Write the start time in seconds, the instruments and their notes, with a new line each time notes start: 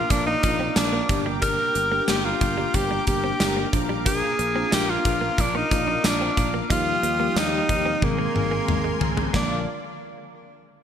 Already playing: tine electric piano A#3 D4 F4, tenor saxophone F4, analog synth pad A#4 F5 D6
0.10 fretless electric bass A#1, tenor saxophone D4, kick, closed hi-hat
0.27 clean electric guitar A#3, tenor saxophone D#4
0.43 fretless electric bass A#1, tine electric piano A#3 F4 D5, muted clean electric guitar stroke, kick, closed hi-hat
0.60 clean electric guitar C4
0.76 fretless electric bass A#1, tenor saxophone D4, snare, closed hi-hat, tambourine
0.93 clean electric guitar A#3
1.09 fretless electric bass G1, tine electric piano A#3 D4 G4, analog synth pad A#4 G5, muted clean electric guitar stroke, kick, closed hi-hat
1.26 clean electric guitar G3
1.42 clean electric guitar G3, tenor saxophone A#4, kick, closed hi-hat
1.75 fretless electric bass G1, muted clean electric guitar stroke, closed hi-hat
1.92 clean electric guitar A#3, tine electric piano A#3 D4 G4
2.08 fretless electric bass G1, clean electric guitar A#3, tenor saxophone G4, snare, closed hi-hat, tambourine
2.25 tenor saxophone F4
2.41 fretless electric bass G1, muted clean electric guitar stroke, kick, closed hi-hat
2.58 clean electric guitar G3
2.74 fretless electric bass G1, tenor saxophone G4, kick, closed hi-hat
2.91 clean electric guitar G3
3.07 fretless electric bass G1, tine electric piano A#3 D4 G4, tenor saxophone G4, muted clean electric guitar stroke, kick, closed hi-hat
3.24 clean electric guitar C4
3.40 fretless electric bass G1, snare, closed hi-hat, tambourine
3.57 clean electric guitar A#3
3.73 fretless electric bass A#1, tine electric piano A#3 D4 F4, analog synth pad F5, muted clean electric guitar stroke, kick, closed hi-hat
3.89 clean electric guitar G3
4.06 clean electric guitar A#3, tenor saxophone G#4, kick, closed hi-hat
4.39 fretless electric bass A#1, muted clean electric guitar stroke, closed hi-hat
4.55 tine electric piano A#3 D4 F4, clean electric guitar C4
4.72 fretless electric bass A#1, clean electric guitar D4, tenor saxophone G4, snare, closed hi-hat, tambourine
4.90 tenor saxophone F4
5.05 fretless electric bass A#1, muted clean electric guitar stroke, kick, closed hi-hat
5.21 clean electric guitar A#3
5.38 fretless electric bass A#1, tenor saxophone D4, kick, closed hi-hat
5.55 clean electric guitar A#3, tenor saxophone D#4
5.71 fretless electric bass A#1, tine electric piano A#3 F4 D5, muted clean electric guitar stroke, kick, closed hi-hat
5.88 clean electric guitar D4
6.04 fretless electric bass A#1, tenor saxophone D4, snare, closed hi-hat, tambourine
6.21 clean electric guitar C4
6.37 fretless electric bass A#1, muted clean electric guitar stroke, kick, closed hi-hat
6.54 clean electric guitar A#3
6.70 fretless electric bass D#2, tine electric piano F3 G3 A#3 D#4 G4, clean electric guitar D#4, tenor saxophone F4, analog synth pad G4 D#6, kick, closed hi-hat
7.03 fretless electric bass D#2, muted clean electric guitar stroke, closed hi-hat
7.19 tine electric piano F3 G3 A#3 D#4 G4, clean electric guitar A#3
7.36 fretless electric bass D#2, clean electric guitar D4, tenor saxophone D#4, snare, closed hi-hat, tambourine
7.69 fretless electric bass D#2, muted clean electric guitar stroke, kick, closed hi-hat
7.86 clean electric guitar C4
8.01 fretless electric bass G#1, tine electric piano D#3 G#3 A#3 C4 G#4, tenor saxophone A#3, analog synth pad A#4 G#5 C6, kick, high tom
8.19 clean electric guitar A#3
8.34 fretless electric bass G#1, tine electric piano D#3 G#3 A#3 C4 G#4, muted clean electric guitar stroke, mid tom
8.51 clean electric guitar A#3
8.68 fretless electric bass G#1, mid tom
8.84 clean electric guitar G#3
9.01 fretless electric bass G#1, muted clean electric guitar stroke, floor tom
9.17 clean electric guitar G#3, floor tom
9.33 fretless electric bass A#1, tine electric piano D3 F3 A#3 F4, clean electric guitar A#3, analog synth pad A#3 F4 D5, tenor saxophone D4, kick, snare